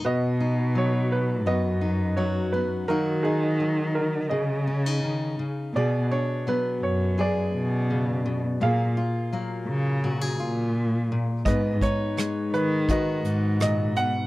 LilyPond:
<<
  \new Staff \with { instrumentName = "Upright piano" } { \time 4/4 \key b \lydian \tempo 4 = 84 << { dis''4 cis''8 b'8 dis''4 cis''8 b'8 | ais'8 gis'4 ais'8 dis''4. r8 | d''8 cis''8 b'8 cis''8 d''2 | eis''2 r2 |
dis''8 cis''4 b'8 dis''4 dis''8 fis''8 | } \\ { <fis' b'>2 <fis' b'>2 | <dis' fis'>8 dis'4. gis'2 | gis'2 gis'2 | gis'2 r2 |
b'2 b'2 | } >> }
  \new Staff \with { instrumentName = "Steel-string acoustic guitar" } { \time 4/4 \key b \lydian << { r8 dis'4. b8 dis'8 fis'8 b8 | <fis ais dis' fis'>8 dis'4. r8 cis'16 dis'4~ dis'16 | b8 d'8 b4 gis'2 | ais8 eis'8 ais4 fis'16 gis'16 eis'4. |
b8 dis'4. fis'8 dis'4. | } \\ { b,4 fis4 fis,4 fis4 | dis4 fis4 cis4 dis8 cis8 | b,4 fis4 fis,4 cis8 b,8 | ais,4 fis4 ais,4. ais,8 |
gis,4 gis4 dis4 ais,8 b,8 | } >> }
  \new Staff \with { instrumentName = "Cello" } { \clef bass \time 4/4 \key b \lydian b,2 fis,2 | dis2 cis2 | b,8 r4 fis,4 b,4. | ais,8 r4 cis4 ais,4. |
gis,8 r4 dis4 gis,4. | }
  \new DrumStaff \with { instrumentName = "Drums" } \drummode { \time 4/4 r4 r4 r4 r4 | r4 r4 r4 r4 | r4 r4 r4 r4 | r4 r4 r4 r4 |
<hh bd>8 <hh bd>8 <hh ss>8 hh8 <hh bd>8 hh8 <hh ss>8 hh8 | }
>>